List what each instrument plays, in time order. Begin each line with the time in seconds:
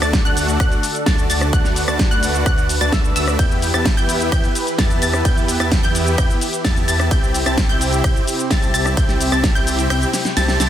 Already playing: analog synth pad D3 D4 A4
0.02 detuned saw bass D2, supersaw synth A3 D4 F#4 D5 A5, synth pluck A6, cross-stick, closed hi-hat, shaker
0.13 kick, snare, closed hi-hat, shaker
0.25 detuned saw bass D2, supersaw synth A3 D4 F#4 D5 F#5, synth pluck F#6, closed hi-hat, shaker
0.37 open hi-hat, shaker
0.48 closed hi-hat, shaker
0.60 detuned saw bass D2, supersaw synth A3 D4 F#4 D5 F#5, synth pluck F#6, kick, cross-stick, closed hi-hat, shaker
0.72 closed hi-hat, shaker
0.83 open hi-hat, shaker
0.95 closed hi-hat, shaker
1.06 detuned saw bass D2, supersaw synth A3 D4 F#4 D5 A5, synth pluck A6, kick, snare, closed hi-hat, shaker
1.18 closed hi-hat, shaker
1.30 detuned saw bass D2, supersaw synth A3 D4 F#4 D5 A5, synth pluck A6, open hi-hat, shaker
1.41 cross-stick, shaker
1.53 detuned saw bass D2, supersaw synth A3 D4 F#4 D5 F#5, analog synth pad B4, synth pluck F#6, kick, closed hi-hat, shaker
1.64 snare, shaker
1.76 open hi-hat, shaker
1.88 detuned saw bass D2, supersaw synth A3 D4 F#4 D5 A5, synth pluck A6, cross-stick, shaker
1.99 kick, snare, closed hi-hat, shaker
2.11 detuned saw bass D2, supersaw synth A3 D4 F#4 D5 F#5, synth pluck F#6, closed hi-hat, shaker
2.23 open hi-hat, shaker
2.34 closed hi-hat, shaker
2.46 detuned saw bass D2, supersaw synth A3, synth pluck F#6, kick, cross-stick, closed hi-hat, shaker
2.58 closed hi-hat, shaker
2.69 open hi-hat, shaker
2.81 detuned saw bass D2, supersaw synth A3 D4 F#4 D5 A5, synth pluck A6, closed hi-hat, shaker
2.92 detuned saw bass D2, supersaw synth A3 D4 F#4 E5, synth pluck E6, kick, snare, closed hi-hat, shaker
3.04 closed hi-hat, shaker
3.16 detuned saw bass D2, supersaw synth A3 D4 F#4 D5 E5, synth pluck E6, open hi-hat, shaker
3.28 cross-stick, closed hi-hat, shaker
3.39 detuned saw bass E2, analog synth pad E3 E4 G4, supersaw synth B3 E4 G4 G5, synth pluck G6, kick, closed hi-hat, ride, shaker
3.52 shaker
3.62 open hi-hat, shaker
3.74 detuned saw bass E2, supersaw synth B3 E4 G4 E5 A5, synth pluck A6, cross-stick, shaker
3.85 kick, snare, closed hi-hat, ride, shaker
3.97 detuned saw bass E2, supersaw synth B3 E4 G4 E5 G5, synth pluck G6, closed hi-hat, shaker
4.09 open hi-hat, shaker
4.20 closed hi-hat, shaker
4.32 detuned saw bass E2, supersaw synth E4 E5, synth pluck G6, kick, cross-stick, closed hi-hat, ride, shaker
4.44 closed hi-hat, shaker
4.55 open hi-hat, shaker
4.67 closed hi-hat, shaker
4.78 detuned saw bass E2, supersaw synth B3 E4 G4 E5 A5, synth pluck A6, kick, snare, closed hi-hat, ride, shaker
4.90 closed hi-hat, shaker
5.02 detuned saw bass E2, supersaw synth B3 E4 G4 E5 A5, synth pluck A6, open hi-hat, shaker
5.13 cross-stick, closed hi-hat, shaker
5.25 detuned saw bass E2, supersaw synth E4 G4 E5, synth pluck G6, kick, closed hi-hat, ride, shaker
5.38 shaker
5.48 open hi-hat, shaker
5.60 detuned saw bass E2, supersaw synth B3 E4 G4 E5 A5, synth pluck A6, cross-stick, closed hi-hat, shaker
5.71 kick, snare, closed hi-hat, ride, shaker
5.83 detuned saw bass E2, supersaw synth B3 E4 G4 E5 G5, synth pluck G6, closed hi-hat, shaker
5.95 open hi-hat, shaker
6.07 closed hi-hat, shaker
6.18 detuned saw bass E2, synth pluck G6, kick, cross-stick, closed hi-hat, ride, shaker
6.30 closed hi-hat, shaker
6.41 open hi-hat, shaker
6.53 closed hi-hat, shaker
6.65 detuned saw bass E2, supersaw synth B3 E4 G4 E5 A5, synth pluck A6, kick, snare, closed hi-hat, ride, shaker
6.76 closed hi-hat, shaker
6.88 detuned saw bass E2, supersaw synth B3 E4 G4 E5 A5, synth pluck A6, open hi-hat, shaker
7.00 cross-stick, closed hi-hat, shaker
7.11 detuned saw bass C2, analog synth pad C3 C4, supersaw synth C4 E4 G4 E5 G5, synth pluck G6, kick, closed hi-hat, ride, shaker
7.24 shaker
7.34 open hi-hat, shaker
7.46 detuned saw bass C2, supersaw synth C4 E4 G4 E5 A5, synth pluck A6, cross-stick, closed hi-hat, shaker
7.58 kick, snare, closed hi-hat, ride, shaker
7.69 detuned saw bass C2, supersaw synth C4 E4 G4 E5 G5, synth pluck G6, closed hi-hat, shaker
7.81 open hi-hat, shaker
7.93 closed hi-hat, shaker
8.04 detuned saw bass C2, synth pluck G6, kick, cross-stick, closed hi-hat, ride, shaker
8.16 closed hi-hat, shaker
8.28 open hi-hat, shaker
8.39 closed hi-hat, shaker
8.51 detuned saw bass C2, supersaw synth C4 E4 G4 E5 A5, synth pluck A6, kick, snare, closed hi-hat, ride, shaker
8.62 closed hi-hat, shaker
8.74 detuned saw bass C2, supersaw synth C4 E4 G4 E5 A5, synth pluck A6, open hi-hat, shaker
8.86 cross-stick, closed hi-hat, shaker
8.97 detuned saw bass C2, supersaw synth C4 E4 G4 E5 G5, synth pluck G6, kick, closed hi-hat, ride, shaker
9.09 snare, closed hi-hat, shaker
9.21 open hi-hat, shaker
9.32 detuned saw bass C2, supersaw synth C4 E4 G4 E5 A5, synth pluck A6, cross-stick, closed hi-hat, shaker
9.44 kick, snare, closed hi-hat, ride, shaker
9.55 detuned saw bass C2, supersaw synth C4 E4 G4 E5 G5, synth pluck G6, closed hi-hat, shaker
9.67 open hi-hat, shaker
9.79 closed hi-hat, shaker
9.90 detuned saw bass C2, supersaw synth C4 E4 G4 E5 G5, synth pluck G6, cross-stick, closed hi-hat, ride, shaker
10.02 closed hi-hat, shaker
10.13 snare, open hi-hat, shaker
10.25 snare, closed hi-hat, shaker
10.37 detuned saw bass C2, supersaw synth C4 E4 G4 E5 A5, synth pluck A6, snare, closed hi-hat, ride, shaker
10.48 snare, closed hi-hat, shaker
10.60 detuned saw bass C2, supersaw synth C4 E4 G4 E5 A5, synth pluck A6, snare, open hi-hat, shaker